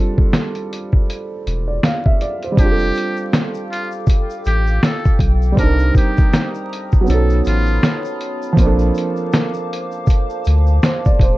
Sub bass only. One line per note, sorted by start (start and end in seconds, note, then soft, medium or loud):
1.47 1.79 E1 loud
2.58 2.91 F1 medium
4.46 4.79 A1 medium
5.20 5.53 B1 medium
5.58 5.91 C2 loud
7.09 7.41 B1 loud
7.46 7.79 A1 medium
8.58 8.91 A#1 loud
10.47 10.79 D2 medium
11.20 11.38 D#1 medium